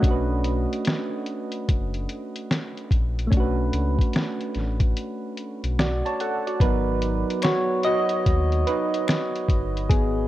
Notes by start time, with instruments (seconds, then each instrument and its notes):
Already playing: synth keys D#5
0.00 sub bass B1, synth keys A3 C#4, kick
0.04 synth keys D4 F#4, closed hi-hat
0.11 synth keys B4
0.44 closed hi-hat
0.73 closed hi-hat
0.85 snare, closed hi-hat
1.26 closed hi-hat
1.52 closed hi-hat
1.69 sub bass F#1, kick, closed hi-hat
1.94 closed hi-hat
2.09 closed hi-hat
2.36 closed hi-hat
2.51 snare, closed hi-hat
2.77 closed hi-hat
2.91 sub bass A#1, kick, closed hi-hat
3.19 closed hi-hat
3.27 synth keys A3 C#4
3.32 sub bass B1, synth keys D4, kick, closed hi-hat
3.37 synth keys F#4 B4
3.73 sub bass C#2, closed hi-hat
3.99 kick, closed hi-hat
4.13 snare, closed hi-hat
4.41 closed hi-hat
4.55 sub bass A1, snare, closed hi-hat
4.80 kick, closed hi-hat
4.97 closed hi-hat
5.38 closed hi-hat
5.64 sub bass B1, closed hi-hat
5.79 synth keys F#4 D5, snare, closed hi-hat
6.06 synth keys C#5 A5, closed hi-hat
6.20 synth keys A4 F#5, closed hi-hat
6.47 synth keys F#4 D5, closed hi-hat
6.60 sub bass G#1, synth keys F#3 B3 D#4 A#4 B4, kick, closed hi-hat
7.02 closed hi-hat
7.30 closed hi-hat
7.42 synth keys F#4 C#5, finger snap, snare, closed hi-hat
7.83 synth keys F#4 D#5, closed hi-hat
8.09 closed hi-hat
8.26 sub bass D#2, kick, closed hi-hat
8.52 closed hi-hat
8.67 synth keys D#4 B4, closed hi-hat
8.94 closed hi-hat
9.08 finger snap, snare, closed hi-hat
9.35 closed hi-hat
9.48 sub bass G1, kick, closed hi-hat
9.77 closed hi-hat
9.89 sub bass G#1, synth keys B3 G#4, kick, closed hi-hat